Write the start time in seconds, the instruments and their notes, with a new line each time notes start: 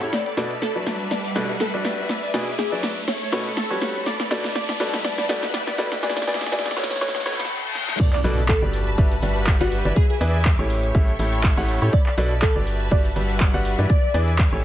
Already playing: string section A3 C#5 B5, analog synth pad A4 G5 C#6, riser
0.01 grand piano C#4 E4 G4 A4 C#5, closed hi-hat
0.12 string section B4, analog synth pad D5 B5, digital synth lead D5, snare, closed hi-hat
0.26 digital synth lead D5, closed hi-hat
0.37 grand piano B2 D4 F#4 A4 B4 D5, string section A5, snare, open hi-hat
0.47 string section E5, closed hi-hat
0.62 digital synth lead A4, snare, closed hi-hat
0.75 grand piano F#3 D4 F#4 B4 D5
0.86 analog synth pad G3 F#5, string section G3, snare, open hi-hat
1.00 closed hi-hat
1.11 digital synth lead D5, snare, closed hi-hat
1.25 digital synth lead D5, open hi-hat
1.36 grand piano B2 D4 F#4 A4 B4 D5, snare, open hi-hat
1.49 closed hi-hat
1.60 digital synth lead A4, snare, closed hi-hat
1.74 grand piano G3 D4 F#4 G4 B4 D5
1.85 snare, open hi-hat
1.98 closed hi-hat
2.09 analog synth pad G#4 E5 D6, digital synth lead D5, snare, closed hi-hat
2.23 digital synth lead D5, closed hi-hat
2.34 grand piano B2 D4 F#4 G#4 B4 D5, snare, open hi-hat
2.44 string section G#5, closed hi-hat
2.58 digital synth lead G#4, snare, closed hi-hat
2.72 grand piano F#3 D4 F#4 B4 D5
2.83 string section A3, analog synth pad A4 C#6, snare, open hi-hat
2.97 closed hi-hat
3.07 string section C#5, digital synth lead C#5, snare, closed hi-hat
3.21 digital synth lead C#5, closed hi-hat
3.32 grand piano B2 C#4 F#4 A4 B4 C#5, snare, open hi-hat
3.39 string section B5
3.46 closed hi-hat
3.57 digital synth lead A4, snare, closed hi-hat
3.70 grand piano G3 C#4 F#4 G4 B4 C#5
3.82 snare, open hi-hat
3.95 closed hi-hat
4.06 string section B4, digital synth lead D5, analog synth pad D5 B5, snare, closed hi-hat
4.20 digital synth lead D5, snare, closed hi-hat
4.31 grand piano B2 D4 F#4 A4 B4 D5, snare, open hi-hat
4.40 string section E5 A5
4.44 snare, closed hi-hat
4.55 digital synth lead D5, snare, closed hi-hat
4.69 digital synth lead D5, snare
4.80 grand piano B2 D4 F#4 A4 B4 D5, string section G3, analog synth pad G4 F#5 B5, snare, open hi-hat
4.93 snare, closed hi-hat
5.04 digital synth lead D5, snare, closed hi-hat
5.18 digital synth lead D5, snare, open hi-hat
5.29 grand piano B2 D4 F#4 A4 B4 D5, snare, open hi-hat
5.43 snare, closed hi-hat
5.54 digital synth lead D5, snare, closed hi-hat
5.67 digital synth lead D5, snare
5.78 grand piano B2 D4 F#4 A4 B4 D5, snare, open hi-hat
5.92 snare, closed hi-hat
6.03 grand piano B2 D4 F#4 G#4 B4 D5, analog synth pad G#4 E5 D6, digital synth lead D5, snare, closed hi-hat
6.10 snare
6.16 digital synth lead D5, snare, closed hi-hat
6.22 snare
6.27 grand piano B2 D4 F#4 G#4 B4 D5, digital synth lead D5, snare, open hi-hat
6.34 string section G#5, snare
6.41 digital synth lead D5, snare, closed hi-hat
6.46 snare
6.52 grand piano B2 D4 F#4 G#4 B4 D5, digital synth lead D5, snare, closed hi-hat
6.59 snare
6.65 digital synth lead D5, snare, closed hi-hat
6.71 snare
6.76 grand piano B2 C#4 F#4 A4 B4 C#5, string section A3, analog synth pad A4 G5 C#6, digital synth lead C#5, snare, open hi-hat
6.83 snare
6.90 digital synth lead C#5, snare, closed hi-hat
6.96 snare
7.01 grand piano B2 C#4 F#4 A4 B4 C#5, digital synth lead C#5, snare, closed hi-hat, reverse cymbal
7.08 snare
7.15 digital synth lead C#5, snare, closed hi-hat
7.20 snare
7.26 grand piano B2 C#4 F#4 A4 B4 C#5, digital synth lead C#5, snare, open hi-hat
7.32 string section C#5 F#5 B5, snare
7.39 digital synth lead C#5, snare, closed hi-hat
7.45 snare
7.75 snare
7.88 snare
8.00 analog synth pad A4 D5 B5, string section B4, digital synth lead D5, kick, closed hi-hat, crash, impact
8.13 digital synth lead D5, clap
8.24 fm bass B1, grand piano B2 D4 F#4 A4 B4 D5, open hi-hat
8.34 string section E5 A5
8.38 closed hi-hat
8.49 digital synth lead A4, kick, clap, closed hi-hat
8.62 fm bass G1, grand piano G3 D4 F#4 G4 B4 D5
8.73 analog synth pad G3 F#5, open hi-hat
8.87 closed hi-hat
8.98 fm bass G1, grand piano G3 D4 F#4 G4 B4 E5, kick, closed hi-hat
9.11 open hi-hat
9.22 fm bass G1, grand piano G3 D4 F#4 G4 B4 E5, open hi-hat
9.36 closed hi-hat
9.47 kick, clap, closed hi-hat
9.60 fm bass G1, grand piano G3 D4 F#4 G4 B4 F#5, digital synth lead F#4, closed hi-hat
9.72 open hi-hat
9.85 fm bass G1, grand piano E3 D4 F#4 G4 B4 D5, closed hi-hat
9.96 analog synth pad G#4 E5 D6, digital synth lead G#4, kick, closed hi-hat
10.10 digital synth lead G#4
10.21 fm bass E2, grand piano E3 D4 E4 G#4 B4 D5, open hi-hat
10.30 string section G#5, closed hi-hat
10.45 kick, clap, closed hi-hat
10.59 fm bass A1, grand piano A2 C#4 E4 G4 A4 C#5
10.70 analog synth pad A4 G5 C#6, string section C#5, open hi-hat
10.83 closed hi-hat
10.95 fm bass A1, grand piano A2 C#4 E4 G4 A4 E5, kick, closed hi-hat
11.08 closed hi-hat
11.19 fm bass A1, grand piano A2 C#4 E4 G4 A4 E5, open hi-hat
11.26 string section B5
11.33 closed hi-hat
11.43 kick, clap, closed hi-hat
11.57 fm bass A1, grand piano A2 C#4 E4 G4 A4 F#5, closed hi-hat
11.68 open hi-hat
11.82 fm bass A2, grand piano C#4 E4 G4 A4 C#5, closed hi-hat
11.93 string section B4, digital synth lead D5, analog synth pad D5 B5, kick, closed hi-hat
12.06 digital synth lead D5, clap
12.18 fm bass B1, grand piano B2 D4 F#4 A4 B4 D5, string section E5, open hi-hat
12.27 string section A5, closed hi-hat
12.42 digital synth lead A4, kick, clap, closed hi-hat
12.56 fm bass G1, grand piano G3 D4 F#4 G4 B4 D5
12.67 analog synth pad G3 F#5, open hi-hat
12.80 closed hi-hat
12.91 fm bass G1, grand piano G3 D4 F#4 G4 B4 E5, digital synth lead D5, kick, closed hi-hat
13.05 open hi-hat
13.16 fm bass G1, grand piano G3 D4 F#4 G4 B4 E5, open hi-hat
13.30 closed hi-hat
13.40 kick, clap, closed hi-hat
13.54 fm bass G1, grand piano G3 D4 F#4 G4 B4 F#5, closed hi-hat
13.65 open hi-hat
13.79 fm bass G2, grand piano E3 D4 F#4 G4 B4 D5, closed hi-hat
13.90 analog synth pad G#4 E5 D6, digital synth lead D5, kick, closed hi-hat
14.14 fm bass E2, grand piano E3 D4 E4 G#4 B4 D5, open hi-hat
14.24 string section G#5
14.28 closed hi-hat
14.39 kick, clap, closed hi-hat
14.52 fm bass A1, grand piano A2 C#4 E4 G4 A4 C#5